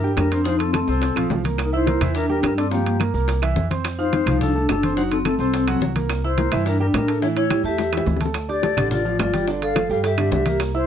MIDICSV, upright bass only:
0, 0, Header, 1, 2, 480
1, 0, Start_track
1, 0, Tempo, 281558
1, 779, Time_signature, 4, 2, 24, 8
1, 18524, End_track
2, 0, Start_track
2, 0, Title_t, "Upright bass"
2, 0, Program_c, 0, 32
2, 0, Note_on_c, 0, 43, 95
2, 243, Note_off_c, 0, 43, 0
2, 290, Note_on_c, 0, 41, 88
2, 1405, Note_off_c, 0, 41, 0
2, 1495, Note_on_c, 0, 36, 92
2, 1946, Note_off_c, 0, 36, 0
2, 1973, Note_on_c, 0, 34, 69
2, 2196, Note_off_c, 0, 34, 0
2, 2207, Note_on_c, 0, 36, 84
2, 3326, Note_off_c, 0, 36, 0
2, 3420, Note_on_c, 0, 40, 94
2, 4095, Note_off_c, 0, 40, 0
2, 4143, Note_on_c, 0, 43, 82
2, 5256, Note_off_c, 0, 43, 0
2, 5351, Note_on_c, 0, 36, 89
2, 6022, Note_off_c, 0, 36, 0
2, 6067, Note_on_c, 0, 41, 81
2, 7180, Note_off_c, 0, 41, 0
2, 7264, Note_on_c, 0, 36, 98
2, 7939, Note_off_c, 0, 36, 0
2, 7987, Note_on_c, 0, 30, 90
2, 9100, Note_off_c, 0, 30, 0
2, 9182, Note_on_c, 0, 36, 96
2, 9859, Note_off_c, 0, 36, 0
2, 9898, Note_on_c, 0, 36, 89
2, 11015, Note_off_c, 0, 36, 0
2, 11110, Note_on_c, 0, 43, 93
2, 11782, Note_off_c, 0, 43, 0
2, 11824, Note_on_c, 0, 45, 92
2, 12937, Note_off_c, 0, 45, 0
2, 13016, Note_on_c, 0, 40, 94
2, 13694, Note_off_c, 0, 40, 0
2, 13745, Note_on_c, 0, 38, 85
2, 14856, Note_off_c, 0, 38, 0
2, 14947, Note_on_c, 0, 33, 95
2, 15618, Note_off_c, 0, 33, 0
2, 15670, Note_on_c, 0, 31, 87
2, 16776, Note_off_c, 0, 31, 0
2, 16867, Note_on_c, 0, 43, 95
2, 17535, Note_off_c, 0, 43, 0
2, 17577, Note_on_c, 0, 36, 91
2, 18524, Note_off_c, 0, 36, 0
2, 18524, End_track
0, 0, End_of_file